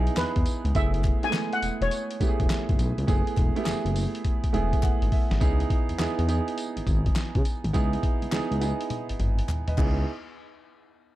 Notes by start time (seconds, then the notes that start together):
Already playing: B3 D#4 E4 G4 G#4
0.07 closed hi-hat
0.17 E2 B4, snare, clap, closed hi-hat, tambourine
0.36 E2, kick, closed hi-hat
0.46 closed hi-hat, tambourine
0.65 C#2, closed hi-hat
0.75 F#1 A3 B3 E4 G#4 E5, kick, closed hi-hat, tambourine
0.94 closed hi-hat
1.04 kick, clap, closed hi-hat
1.23 G#3 B3 E4 G#4 G#5, closed hi-hat
1.29 A3, snare, clap, closed hi-hat
1.33 tambourine
1.53 F#5, closed hi-hat
1.62 E1, closed hi-hat, tambourine
1.81 E1 C#5, closed hi-hat
1.91 closed hi-hat, tambourine
2.11 closed hi-hat
2.20 E1 A3 B3 E4 G4, kick, closed hi-hat, tambourine
2.28 G#4
2.40 E1, kick, closed hi-hat
2.50 snare, clap, closed hi-hat, tambourine
2.69 F#1, kick, closed hi-hat
2.79 B1, closed hi-hat, tambourine
2.98 C#2, closed hi-hat
3.07 F#1 A3 B3 E4 G#4, kick, closed hi-hat, tambourine
3.27 closed hi-hat
3.37 E1, kick, clap, closed hi-hat
3.56 A3 B3 E4 G4, closed hi-hat
3.64 F#1 G#4, snare, clap, closed hi-hat, tambourine
3.85 F#1, closed hi-hat
3.96 open hi-hat, tambourine
4.15 closed hi-hat
4.25 kick, closed hi-hat
4.44 kick, closed hi-hat
4.53 E1 A3 B3 E4 G#4 G#5, closed hi-hat
4.73 kick, closed hi-hat
4.83 G#1 F#5, kick, clap, closed hi-hat
5.02 G#1, closed hi-hat
5.12 E5, kick, open hi-hat
5.31 G#1, snare, closed hi-hat
5.40 C#2 B3 D#4 E4 G#4, kick, closed hi-hat, tambourine
5.60 closed hi-hat
5.70 kick, closed hi-hat
5.89 E2, closed hi-hat
5.98 E2 B3 D#4 E4 G#4, snare, clap, closed hi-hat, tambourine
6.19 E2, closed hi-hat
6.28 B3 D#4 E4 G#4, closed hi-hat, tambourine
6.48 closed hi-hat
6.58 closed hi-hat, tambourine
6.77 G#1, closed hi-hat
6.87 G#1, kick, closed hi-hat, tambourine
7.06 kick, closed hi-hat
7.16 snare, clap, closed hi-hat, tambourine
7.35 C#3, kick, closed hi-hat
7.45 closed hi-hat, tambourine
7.64 G#1, closed hi-hat
7.73 C#2 B3 D#4 E4 G#4, kick, closed hi-hat, tambourine
7.93 closed hi-hat
8.03 kick, closed hi-hat
8.22 C#2, closed hi-hat
8.32 C#2 B3 D#4 E4 G#4, snare, clap, closed hi-hat, tambourine
8.51 C#2, closed hi-hat
8.61 B3 D#4 E4 G#4, closed hi-hat, tambourine
8.81 closed hi-hat
8.90 closed hi-hat, high tom
9.09 G#1, closed hi-hat
9.19 G#1, closed hi-hat, mid tom
9.39 closed hi-hat
9.48 clap, closed hi-hat, mid tom
9.68 B4 D#5, closed hi-hat, mid tom
9.78 C#2 B3 D#4 E4 G#4, kick, clap, crash